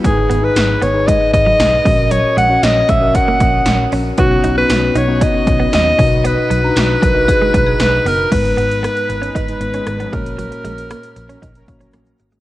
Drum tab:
CC |----------------|----------------|----------------|----------------|
HH |x-x-x-x-x-x-x-o-|x-x-x-x-x-x-x-o-|x-x-x-x-x-x-x-o-|x-x-x-x-x-x-x-o-|
TB |----x-------x---|----x-------x---|----x-------x---|----x-------x---|
SD |----o-------o---|----o-------o---|----o-------o---|----o-------o---|
BD |o-------o-o---o-|------o-o-o-----|o-------o-o---o-|------o-o-o-----|

CC |x---------------|----------------|
HH |xxxxxxxxxxxxxxxx|xxxxxxxxxxxxxxxx|
TB |----------------|----------------|
SD |----r-------r---|----r-------r---|
BD |o-------o-----o-|--------o-o-----|